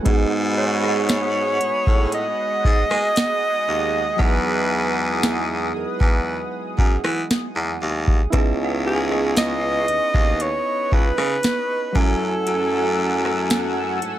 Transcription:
Already playing: F#5
0.03 G#2 G#3 B3 D#4 G#4 B5 D#6, kick, closed hi-hat
0.08 F#4 G#4
0.58 C#5
0.84 cross-stick
0.88 F#5
1.09 snare, closed hi-hat
1.61 A2, closed hi-hat
1.87 A2, kick
2.12 D#5, closed hi-hat
2.64 G#2, kick
2.90 G#3, cross-stick
3.16 snare, closed hi-hat
3.68 D#2
4.16 E2 F#3 B3 D#4 F#5, kick
4.21 E4 G#4 B4
5.23 snare
5.75 E2 B4
6.00 E2, kick
6.78 F#2, kick
7.04 E3, cross-stick
7.31 snare
7.55 E2
7.81 D#2
8.07 kick
8.30 C#2 B3 C#4 E4 B4 D#5 C#6, kick, closed hi-hat
8.35 D#4 G#4
8.64 F#5
8.87 G#4
8.95 G#5
9.11 cross-stick
9.37 D#5, snare, closed hi-hat
9.88 D#2, closed hi-hat
10.14 D#2, kick
10.40 C#5, closed hi-hat
10.92 C#2 B4, kick
11.18 C#3, cross-stick
11.43 snare, closed hi-hat
11.92 F#2 F#3 G#3 C#4 A4 F#5 G#5 E6, kick
11.97 E4 A4 G#5
12.47 F#2, closed hi-hat
13.25 cross-stick
13.50 snare, closed hi-hat
14.02 G#2, closed hi-hat

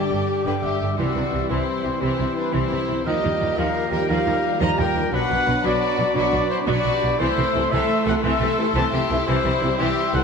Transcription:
Already playing: D3 G3 D4 G4 D5 D6
0.10 G1 G2 D3
0.46 G1 G2 D3 G4 B4 G5 D6
0.63 G1 G2 D3 G4 E5
0.81 G1 G2 D3
0.97 C2 C3 E3 C4 E4 F#4 G4 D5 C6 E6
1.15 C2 C3 E3
1.31 C2 C3 E3
1.49 C2 C3 E3 E4 G4 C5 C6 E6
1.84 C2 C3 E3
2.01 C2 C3 E3 E4 G4 C5 C6 E6
2.19 C2 C3 E3
2.37 D4 B4
2.52 C2 C3 E3 E4 G4 C5 C6 E6
2.70 C2 C3 E3
2.87 C2 C3 E3
3.04 D#2 D#3 F3 G3 A#3 D#4 F4 G4 D#5 A#5 F6
3.22 D#2 D#3 F3
3.38 D#2 D#3 F3
3.56 D#2 D#3 F3 G4 A#4 F5 A#5 F6
3.91 D#2 D#3 F3 A#4 G5
4.09 D#2 D#3 F3 G4 A#4 F5 A#5 F6
4.26 D#2 D#3 F3
4.60 D#2 D#3 F3 G4 D#5 A#5 F6
4.78 D#2 D#3 F3 A#4 G5
4.95 D#2 D#3 F3
5.11 B1 B2 F#3 B3 D4 F#4 B4 F#5 B5 D6
5.29 B1 B2 F#3
5.45 B1 B2 F#3
5.63 B1 B2 F#3 F#4 D5 B5 D6
5.98 B1 B2 F#3
6.15 B1 B2 F#3 F#4 D5 B5 D6
6.32 B1 B2 F#3
6.50 E4 C5
6.67 B1 B2 F#3 F#4 D5 B5 D6
6.85 B1 B2 F#3
6.94 G4
7.01 B1 B2 F#3
7.19 C2 C3 E3 A3 E4 A4 C5 C6 E6
7.37 C2 C3 E3
7.54 C2 C3 E3 A3 E4
7.71 C2 C3 E3 A4 E5 C6 E6
8.06 C2 C3 E3 A3 E4 A4 F#5
8.23 C2 C3 E3 A4 E5 C6 E6
8.40 C2 C3 E3
8.58 C3 E3 A3 E4
8.74 C2 C3 E3 A4 C5 A5 C6 E6
8.92 C2 C3 E3 G4 E5
9.10 C2 C3 E3 A3 E4
9.26 C2 C3 E3 G3 C4 E4 G4 C5 C6 E6
9.44 C2 C3 E3
9.60 C2 C3 E3 G3 E4
9.78 C2 C3 E3 G4 E5 C6 E6
10.13 C2 C3 E3 G3 E4 A4 F#5

